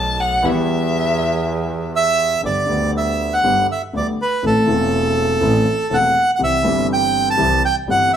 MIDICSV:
0, 0, Header, 1, 5, 480
1, 0, Start_track
1, 0, Key_signature, 1, "major"
1, 0, Tempo, 494234
1, 437, Time_signature, 4, 2, 24, 8
1, 7931, End_track
2, 0, Start_track
2, 0, Title_t, "Violin"
2, 0, Program_c, 0, 40
2, 0, Note_on_c, 0, 81, 92
2, 194, Note_on_c, 0, 78, 85
2, 209, Note_off_c, 0, 81, 0
2, 439, Note_on_c, 0, 76, 84
2, 453, Note_off_c, 0, 78, 0
2, 1877, Note_off_c, 0, 76, 0
2, 7931, End_track
3, 0, Start_track
3, 0, Title_t, "Bandoneon"
3, 0, Program_c, 1, 23
3, 1905, Note_on_c, 1, 76, 83
3, 2344, Note_off_c, 1, 76, 0
3, 2387, Note_on_c, 1, 74, 61
3, 2827, Note_off_c, 1, 74, 0
3, 2887, Note_on_c, 1, 76, 58
3, 3238, Note_on_c, 1, 78, 69
3, 3241, Note_off_c, 1, 76, 0
3, 3562, Note_off_c, 1, 78, 0
3, 3610, Note_on_c, 1, 76, 57
3, 3710, Note_off_c, 1, 76, 0
3, 3854, Note_on_c, 1, 74, 53
3, 3953, Note_off_c, 1, 74, 0
3, 4096, Note_on_c, 1, 71, 60
3, 4321, Note_off_c, 1, 71, 0
3, 4337, Note_on_c, 1, 69, 67
3, 5768, Note_on_c, 1, 78, 67
3, 5792, Note_off_c, 1, 69, 0
3, 6129, Note_off_c, 1, 78, 0
3, 6171, Note_on_c, 1, 78, 51
3, 6222, Note_off_c, 1, 78, 0
3, 6251, Note_on_c, 1, 76, 73
3, 6675, Note_off_c, 1, 76, 0
3, 6730, Note_on_c, 1, 79, 77
3, 7078, Note_off_c, 1, 79, 0
3, 7094, Note_on_c, 1, 81, 79
3, 7406, Note_off_c, 1, 81, 0
3, 7431, Note_on_c, 1, 79, 73
3, 7533, Note_off_c, 1, 79, 0
3, 7679, Note_on_c, 1, 78, 70
3, 7885, Note_off_c, 1, 78, 0
3, 7899, Note_on_c, 1, 76, 69
3, 7931, Note_off_c, 1, 76, 0
3, 7931, End_track
4, 0, Start_track
4, 0, Title_t, "Grand piano"
4, 0, Program_c, 2, 0
4, 0, Note_on_c, 2, 35, 70
4, 0, Note_on_c, 2, 47, 76
4, 0, Note_on_c, 2, 51, 69
4, 0, Note_on_c, 2, 54, 65
4, 0, Note_on_c, 2, 57, 55
4, 0, Note_on_c, 2, 59, 56
4, 332, Note_off_c, 2, 51, 0
4, 337, Note_off_c, 2, 57, 0
4, 340, Note_off_c, 2, 35, 0
4, 341, Note_off_c, 2, 47, 0
4, 345, Note_off_c, 2, 59, 0
4, 349, Note_off_c, 2, 54, 0
4, 411, Note_on_c, 2, 52, 77
4, 420, Note_on_c, 2, 55, 58
4, 425, Note_on_c, 2, 40, 70
4, 433, Note_on_c, 2, 59, 57
4, 446, Note_on_c, 2, 67, 67
4, 2257, Note_off_c, 2, 55, 0
4, 2259, Note_off_c, 2, 40, 0
4, 2260, Note_off_c, 2, 52, 0
4, 2264, Note_off_c, 2, 59, 0
4, 2270, Note_off_c, 2, 67, 0
4, 2358, Note_on_c, 2, 50, 35
4, 2361, Note_on_c, 2, 59, 31
4, 2363, Note_on_c, 2, 43, 40
4, 2363, Note_on_c, 2, 55, 32
4, 2363, Note_on_c, 2, 67, 40
4, 2364, Note_on_c, 2, 31, 37
4, 2564, Note_off_c, 2, 50, 0
4, 2566, Note_off_c, 2, 59, 0
4, 2567, Note_off_c, 2, 31, 0
4, 2567, Note_off_c, 2, 43, 0
4, 2567, Note_off_c, 2, 55, 0
4, 2567, Note_off_c, 2, 67, 0
4, 2584, Note_on_c, 2, 50, 56
4, 2601, Note_on_c, 2, 55, 40
4, 2607, Note_on_c, 2, 38, 57
4, 2610, Note_on_c, 2, 59, 45
4, 2622, Note_on_c, 2, 67, 59
4, 3293, Note_off_c, 2, 55, 0
4, 3294, Note_off_c, 2, 50, 0
4, 3296, Note_off_c, 2, 38, 0
4, 3298, Note_off_c, 2, 59, 0
4, 3303, Note_off_c, 2, 67, 0
4, 3339, Note_on_c, 2, 31, 58
4, 3339, Note_on_c, 2, 50, 48
4, 3339, Note_on_c, 2, 55, 46
4, 3339, Note_on_c, 2, 59, 46
4, 3340, Note_on_c, 2, 43, 54
4, 3343, Note_on_c, 2, 67, 57
4, 3538, Note_off_c, 2, 31, 0
4, 3538, Note_off_c, 2, 43, 0
4, 3538, Note_off_c, 2, 50, 0
4, 3538, Note_off_c, 2, 55, 0
4, 3538, Note_off_c, 2, 59, 0
4, 3540, Note_off_c, 2, 67, 0
4, 3819, Note_on_c, 2, 50, 44
4, 3820, Note_on_c, 2, 38, 43
4, 3821, Note_on_c, 2, 59, 32
4, 3822, Note_on_c, 2, 55, 34
4, 3828, Note_on_c, 2, 67, 44
4, 4019, Note_off_c, 2, 38, 0
4, 4019, Note_off_c, 2, 59, 0
4, 4020, Note_off_c, 2, 55, 0
4, 4021, Note_off_c, 2, 50, 0
4, 4023, Note_off_c, 2, 67, 0
4, 4300, Note_on_c, 2, 52, 34
4, 4301, Note_on_c, 2, 57, 33
4, 4301, Note_on_c, 2, 60, 34
4, 4304, Note_on_c, 2, 33, 46
4, 4304, Note_on_c, 2, 45, 41
4, 4310, Note_on_c, 2, 69, 41
4, 4498, Note_off_c, 2, 52, 0
4, 4499, Note_off_c, 2, 57, 0
4, 4499, Note_off_c, 2, 60, 0
4, 4500, Note_off_c, 2, 33, 0
4, 4500, Note_off_c, 2, 45, 0
4, 4503, Note_off_c, 2, 69, 0
4, 4521, Note_on_c, 2, 52, 49
4, 4536, Note_on_c, 2, 57, 42
4, 4539, Note_on_c, 2, 40, 61
4, 4543, Note_on_c, 2, 28, 61
4, 4547, Note_on_c, 2, 60, 47
4, 4556, Note_on_c, 2, 69, 52
4, 5209, Note_off_c, 2, 52, 0
4, 5217, Note_off_c, 2, 57, 0
4, 5218, Note_off_c, 2, 40, 0
4, 5220, Note_off_c, 2, 28, 0
4, 5222, Note_off_c, 2, 60, 0
4, 5227, Note_off_c, 2, 69, 0
4, 5251, Note_on_c, 2, 52, 55
4, 5254, Note_on_c, 2, 45, 60
4, 5254, Note_on_c, 2, 57, 50
4, 5254, Note_on_c, 2, 69, 64
4, 5255, Note_on_c, 2, 33, 65
4, 5256, Note_on_c, 2, 60, 47
4, 5452, Note_off_c, 2, 52, 0
4, 5453, Note_off_c, 2, 45, 0
4, 5453, Note_off_c, 2, 57, 0
4, 5453, Note_off_c, 2, 69, 0
4, 5454, Note_off_c, 2, 33, 0
4, 5454, Note_off_c, 2, 60, 0
4, 5730, Note_on_c, 2, 52, 38
4, 5731, Note_on_c, 2, 57, 34
4, 5733, Note_on_c, 2, 28, 47
4, 5737, Note_on_c, 2, 69, 41
4, 5738, Note_on_c, 2, 40, 46
4, 5740, Note_on_c, 2, 60, 34
4, 5929, Note_off_c, 2, 52, 0
4, 5929, Note_off_c, 2, 57, 0
4, 5931, Note_off_c, 2, 28, 0
4, 5932, Note_off_c, 2, 69, 0
4, 5933, Note_off_c, 2, 40, 0
4, 5934, Note_off_c, 2, 60, 0
4, 6201, Note_on_c, 2, 36, 42
4, 6202, Note_on_c, 2, 55, 34
4, 6203, Note_on_c, 2, 52, 38
4, 6204, Note_on_c, 2, 67, 43
4, 6206, Note_on_c, 2, 48, 47
4, 6206, Note_on_c, 2, 60, 36
4, 6404, Note_off_c, 2, 36, 0
4, 6404, Note_off_c, 2, 52, 0
4, 6404, Note_off_c, 2, 55, 0
4, 6405, Note_off_c, 2, 67, 0
4, 6406, Note_off_c, 2, 48, 0
4, 6406, Note_off_c, 2, 60, 0
4, 6431, Note_on_c, 2, 52, 48
4, 6444, Note_on_c, 2, 55, 51
4, 6451, Note_on_c, 2, 31, 68
4, 6451, Note_on_c, 2, 43, 67
4, 6459, Note_on_c, 2, 60, 50
4, 6474, Note_on_c, 2, 67, 56
4, 7122, Note_off_c, 2, 52, 0
4, 7129, Note_off_c, 2, 55, 0
4, 7132, Note_off_c, 2, 31, 0
4, 7132, Note_off_c, 2, 43, 0
4, 7136, Note_off_c, 2, 60, 0
4, 7144, Note_off_c, 2, 67, 0
4, 7158, Note_on_c, 2, 55, 51
4, 7163, Note_on_c, 2, 52, 59
4, 7163, Note_on_c, 2, 67, 65
4, 7164, Note_on_c, 2, 36, 66
4, 7165, Note_on_c, 2, 48, 67
4, 7165, Note_on_c, 2, 60, 54
4, 7363, Note_off_c, 2, 55, 0
4, 7365, Note_off_c, 2, 52, 0
4, 7365, Note_off_c, 2, 67, 0
4, 7366, Note_off_c, 2, 36, 0
4, 7366, Note_off_c, 2, 48, 0
4, 7366, Note_off_c, 2, 60, 0
4, 7647, Note_on_c, 2, 52, 40
4, 7650, Note_on_c, 2, 43, 51
4, 7650, Note_on_c, 2, 67, 44
4, 7651, Note_on_c, 2, 31, 47
4, 7651, Note_on_c, 2, 55, 38
4, 7651, Note_on_c, 2, 60, 34
4, 7847, Note_off_c, 2, 52, 0
4, 7848, Note_off_c, 2, 43, 0
4, 7849, Note_off_c, 2, 31, 0
4, 7849, Note_off_c, 2, 55, 0
4, 7849, Note_off_c, 2, 60, 0
4, 7849, Note_off_c, 2, 67, 0
4, 7931, End_track
5, 0, Start_track
5, 0, Title_t, "Double bass"
5, 0, Program_c, 3, 43
5, 0, Note_on_c, 3, 35, 83
5, 343, Note_off_c, 3, 35, 0
5, 442, Note_on_c, 3, 40, 80
5, 2268, Note_off_c, 3, 40, 0
5, 2358, Note_on_c, 3, 31, 45
5, 2564, Note_off_c, 3, 31, 0
5, 2608, Note_on_c, 3, 38, 64
5, 3296, Note_off_c, 3, 38, 0
5, 3338, Note_on_c, 3, 31, 73
5, 3537, Note_off_c, 3, 31, 0
5, 3823, Note_on_c, 3, 38, 51
5, 4020, Note_off_c, 3, 38, 0
5, 4307, Note_on_c, 3, 33, 49
5, 4502, Note_off_c, 3, 33, 0
5, 4550, Note_on_c, 3, 28, 73
5, 5224, Note_off_c, 3, 28, 0
5, 5261, Note_on_c, 3, 33, 84
5, 5457, Note_off_c, 3, 33, 0
5, 5743, Note_on_c, 3, 28, 53
5, 5935, Note_off_c, 3, 28, 0
5, 6214, Note_on_c, 3, 36, 53
5, 6410, Note_off_c, 3, 36, 0
5, 6448, Note_on_c, 3, 31, 71
5, 7130, Note_off_c, 3, 31, 0
5, 7176, Note_on_c, 3, 36, 87
5, 7372, Note_off_c, 3, 36, 0
5, 7641, Note_on_c, 3, 31, 58
5, 7844, Note_off_c, 3, 31, 0
5, 7931, End_track
0, 0, End_of_file